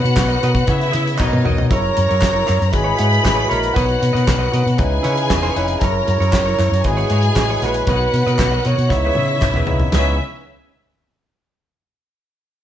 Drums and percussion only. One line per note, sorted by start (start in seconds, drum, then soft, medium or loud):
0.05 closed hi-hat medium
0.16 kick loud
0.16 snare loud
0.16 clap loud
0.30 closed hi-hat soft
0.43 closed hi-hat medium
0.55 kick loud
0.55 closed hi-hat soft
0.67 kick loud
0.67 closed hi-hat medium
0.81 closed hi-hat soft
0.93 closed hi-hat medium
1.07 closed hi-hat medium
1.18 kick loud
1.18 clap medium
1.18 high tom medium
1.33 mid tom medium
1.45 mid tom medium
1.58 floor tom loud
1.71 kick loud
1.71 closed hi-hat loud
1.97 closed hi-hat medium
2.10 closed hi-hat soft
2.21 kick loud
2.21 snare loud
2.21 clap loud
2.24 clap medium
2.48 clap medium
2.48 closed hi-hat medium
2.62 closed hi-hat soft
2.73 kick loud
2.73 closed hi-hat medium
2.99 closed hi-hat medium
3.12 closed hi-hat medium
3.25 kick loud
3.25 snare loud
3.25 clap loud
3.27 clap medium
3.51 closed hi-hat medium
3.63 closed hi-hat medium
3.76 kick loud
3.76 closed hi-hat medium
3.89 closed hi-hat soft
4.03 closed hi-hat medium
4.16 closed hi-hat medium
4.28 kick loud
4.28 snare loud
4.28 clap loud
4.28 clap medium
4.53 closed hi-hat medium
4.67 closed hi-hat soft
4.78 kick loud
4.78 closed hi-hat medium
5.04 closed hi-hat medium
5.17 closed hi-hat medium
5.30 kick loud
5.30 snare loud
5.30 clap medium
5.43 closed hi-hat soft
5.56 closed hi-hat medium
5.68 closed hi-hat medium
5.81 kick loud
5.81 closed hi-hat loud
6.08 closed hi-hat medium
6.22 closed hi-hat soft
6.33 kick loud
6.33 snare loud
6.33 clap loud
6.35 clap medium
6.47 closed hi-hat soft
6.59 clap medium
6.59 closed hi-hat medium
6.74 closed hi-hat soft
6.84 kick loud
6.84 closed hi-hat medium
6.98 closed hi-hat soft
7.10 closed hi-hat medium
7.23 closed hi-hat medium
7.36 kick loud
7.36 snare loud
7.36 clap medium
7.49 closed hi-hat soft
7.62 snare soft
7.62 closed hi-hat medium
7.74 closed hi-hat medium
7.87 kick loud
7.87 closed hi-hat loud
8.14 closed hi-hat medium
8.27 closed hi-hat soft
8.39 kick loud
8.39 snare loud
8.39 clap loud
8.40 clap medium
8.65 closed hi-hat medium
8.79 closed hi-hat soft
8.90 kick medium
8.90 snare medium
9.15 high tom medium
9.41 kick loud
9.41 clap medium
9.41 mid tom medium
9.54 mid tom medium
9.67 floor tom loud
9.80 floor tom medium
9.92 snare loud
9.92 clap medium
9.92 floor tom loud
9.92 ride bell medium